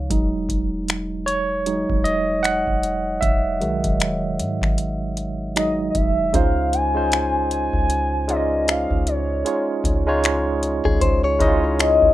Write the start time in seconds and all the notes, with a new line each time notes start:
0.10 E1 F#3 G#3 D#4, kick, closed hi-hat
0.49 E1, kick, closed hi-hat
0.88 finger snap, closed hi-hat
1.26 C#5, closed hi-hat
1.66 F#3 G#3 D#4, closed hi-hat
1.90 E1, kick
2.04 D#5, closed hi-hat
2.43 F#5, finger snap, closed hi-hat
2.67 E1, kick
2.83 closed hi-hat
3.21 E1 E5, kick, closed hi-hat
3.61 B1 D#3 F#3 G#3, closed hi-hat
3.84 E1, kick, closed hi-hat
4.00 finger snap, closed hi-hat
4.40 G#2, closed hi-hat
4.62 G#1, finger snap, kick
4.78 closed hi-hat
5.17 closed hi-hat
5.56 F#3 G#3 D#4 D#5, finger snap, closed hi-hat
5.90 D#5
5.95 E1 E5, kick, closed hi-hat
6.33 C#2 G#3 C#4 D#4 F4 C5 F5, kick, closed hi-hat
6.73 G#5, closed hi-hat
6.95 G#3 C#4 D#4 F4 C5
7.12 finger snap, closed hi-hat
7.51 G#5, closed hi-hat
7.73 C#2, kick
7.90 closed hi-hat
8.28 G#3 C#4 D#4 F4 D5 D#5, closed hi-hat
8.36 D#5
8.68 F5, finger snap, closed hi-hat
8.91 C#2, kick
9.07 C#5, closed hi-hat
9.45 G#3 C#4 D#4 F4 C#5, closed hi-hat
9.84 C#2, kick, closed hi-hat
10.06 G#3 C#4 D#4 F4 C#5
10.24 finger snap, closed hi-hat
10.63 closed hi-hat
10.85 C#2 G#4, kick
11.01 C#2 C5, kick, closed hi-hat
11.24 C#5
11.39 C#2 G#3 C#4 D#4 E4 D#5, kick, closed hi-hat
11.47 F4
11.79 D#5, finger snap, closed hi-hat
12.02 C#2, kick